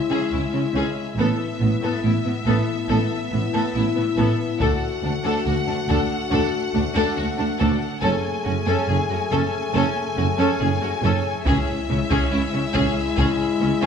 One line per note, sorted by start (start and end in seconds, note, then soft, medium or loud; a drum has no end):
0.00 1.14 G#3 soft
0.00 1.14 E4 soft
0.00 1.13 E5 soft
0.00 impact soft
0.10 0.18 C#3 soft
0.10 0.30 C#4 soft
0.10 0.30 G#4 soft
0.32 0.40 C#2 soft
0.32 0.40 C#3 soft
0.32 0.41 C#4 soft
0.32 0.41 E4 soft
0.53 0.61 C#3 soft
0.53 0.61 C#4 soft
0.53 0.62 C#4 soft
0.74 0.83 C#2 soft
0.74 0.84 C#2 soft
0.74 0.82 C#3 soft
0.74 0.95 C#4 soft
0.74 0.95 G#4 soft
1.16 1.24 A1 soft
1.16 1.26 A1 soft
1.16 1.25 A2 soft
1.16 4.57 B3 soft
1.16 1.38 B3 medium
1.16 4.57 E4 soft
1.16 1.38 A4 medium
1.16 4.56 E5 soft
1.60 1.68 A1 soft
1.60 1.69 A1 soft
1.60 1.69 A2 soft
1.60 1.69 B3 soft
1.60 1.70 B3 soft
1.82 1.90 A2 soft
1.82 2.02 B3 medium
1.82 2.02 A4 soft
2.03 2.11 A1 soft
2.03 2.12 A1 soft
2.03 2.11 A2 soft
2.03 2.12 B3 soft
2.03 2.12 E4 soft
2.25 2.33 A2 soft
2.25 2.34 B3 soft
2.46 2.54 A1 soft
2.46 2.55 A1 soft
2.46 2.54 A2 soft
2.46 2.67 B3 medium
2.46 2.66 A4 medium
2.89 2.97 A1 medium
2.89 2.98 A1 soft
2.89 2.97 A2 medium
2.89 3.09 B3 medium
2.89 3.09 A4 medium
3.32 3.40 A1 soft
3.32 3.41 A1 soft
3.32 3.41 A2 soft
3.32 3.41 B3 soft
3.54 3.62 A2 soft
3.54 3.74 B3 soft
3.54 3.73 A4 medium
3.74 3.82 A1 soft
3.74 3.84 A1 soft
3.74 3.83 A2 soft
3.74 3.84 B3 soft
3.74 3.83 E4 soft
3.96 4.05 A2 soft
3.96 4.04 B3 soft
3.96 4.05 B3 soft
4.17 4.25 A1 medium
4.17 4.26 A2 medium
4.17 4.38 B3 medium
4.17 4.37 A4 soft
4.59 4.69 D2 medium
4.59 7.86 A3 soft
4.59 4.80 D4 soft
4.59 7.86 F#4 soft
4.59 4.80 A4 medium
4.59 8.03 F#5 soft
4.59 taiko medium
5.02 5.11 D2 soft
5.02 5.12 D2 soft
5.02 5.11 D4 soft
5.24 5.33 D2 medium
5.24 5.44 D4 soft
5.24 5.45 A4 medium
5.45 5.54 D2 soft
5.45 5.55 D2 soft
5.45 5.54 D4 soft
5.45 5.55 F#4 soft
5.67 5.76 D2 soft
5.67 5.75 D4 soft
5.88 5.97 D2 medium
5.88 5.96 D2 medium
5.88 5.98 D2 medium
5.88 6.09 D4 medium
5.88 6.09 A4 medium
5.88 taiko soft
6.31 6.40 D2 medium
6.31 6.51 D4 medium
6.31 6.52 A4 medium
6.74 6.83 D2 soft
6.74 6.82 D4 soft
6.94 7.04 D2 medium
6.94 7.15 D4 medium
6.94 7.15 A4 medium
7.17 7.25 D2 soft
7.17 7.26 D2 soft
7.17 7.25 D4 soft
7.17 7.25 F#4 soft
7.37 7.47 D2 soft
7.37 7.45 D4 soft
7.37 7.47 D4 soft
7.58 7.69 D2 medium
7.58 7.68 D2 medium
7.58 7.69 D2 medium
7.58 7.80 D4 medium
7.58 7.79 A4 medium
8.02 8.11 F#1 medium
8.02 8.11 F#2 medium
8.02 11.42 A3 medium
8.02 8.23 C#4 medium
8.02 11.42 G#4 medium
8.02 8.22 A4 medium
8.02 11.42 G#5 medium
8.45 8.54 F#1 soft
8.45 8.54 F#2 soft
8.45 8.54 C#4 soft
8.45 8.53 F#4 soft
8.66 8.75 F#2 medium
8.66 8.88 C#4 medium
8.66 8.87 A4 medium
8.88 8.97 F#1 soft
8.88 8.96 F#2 soft
8.88 8.98 C#4 soft
8.88 8.96 G#4 soft
9.09 9.18 F#2 soft
9.09 9.19 C#4 soft
9.09 9.17 F#4 soft
9.31 9.40 F#1 medium
9.31 9.39 F#2 medium
9.31 9.52 C#4 medium
9.31 9.51 A4 medium
9.74 9.83 F#1 medium
9.74 9.82 F#2 medium
9.74 9.95 C#4 medium
9.74 9.94 A4 medium
10.17 10.26 F#1 soft
10.17 10.26 F#1 medium
10.17 10.25 F#2 medium
10.17 10.25 C#4 soft
10.17 10.25 F#4 soft
10.38 10.47 F#2 medium
10.38 10.59 C#4 medium
10.38 10.59 A4 medium
10.60 10.69 F#1 medium
10.60 10.68 F#2 soft
10.60 10.69 C#4 soft
10.60 10.68 G#4 soft
10.81 10.89 F#2 soft
10.81 10.90 C#4 medium
10.81 10.91 F#4 medium
11.03 11.11 F#1 medium
11.03 11.11 F#2 medium
11.03 11.23 C#4 medium
11.03 11.24 A4 medium
11.45 11.55 C#2 medium
11.45 11.54 C#2 medium
11.45 11.54 C#3 medium
11.45 13.86 G#3 medium
11.45 11.66 C#4 medium
11.45 13.86 E4 medium
11.45 11.66 G#4 medium
11.45 13.86 E5 medium
11.45 taiko medium
11.89 11.97 C#2 soft
11.89 11.98 C#2 medium
11.89 11.97 C#3 medium
11.89 11.98 C#4 soft
12.10 12.19 C#3 medium
12.10 12.31 C#4 medium
12.10 12.30 G#4 medium
12.10 taiko medium
12.32 12.41 C#2 soft
12.32 12.40 C#2 soft
12.32 12.40 C#3 medium
12.32 12.40 C#4 soft
12.32 12.40 E4 soft
12.53 12.62 C#3 soft
12.53 12.61 C#4 soft
12.53 12.62 C#4 medium
12.74 12.82 C#2 medium
12.74 12.84 C#2 medium
12.74 12.83 C#3 medium
12.74 12.94 C#4 medium
12.74 12.94 G#4 medium
12.74 taiko medium
13.17 13.25 C#2 medium
13.17 13.27 C#2 medium
13.17 13.27 C#3 medium
13.17 13.37 C#4 medium
13.17 13.37 G#4 medium
13.17 taiko medium
13.61 13.69 C#2 medium
13.61 13.70 C#2 soft
13.61 13.69 C#3 medium
13.61 13.69 C#4 medium
13.61 13.69 C#4 soft
13.81 13.86 C#3 medium
13.81 13.86 C#4 medium
13.81 13.86 G#4 medium